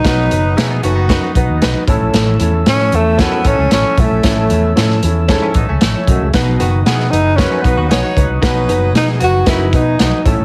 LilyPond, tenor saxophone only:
\new Staff \with { instrumentName = "Tenor saxophone" } { \time 4/4 \key b \mixolydian \tempo 4 = 115 dis'4. r2 r8 | r4 cis'8 a8 b8 cis'8 cis'8 a8~ | a4. r2 r8 | r4 b8 dis'8 cis'8 b8 b8 r8 |
r4 dis'8 fis'8 e'8 dis'8 dis'8 r8 | }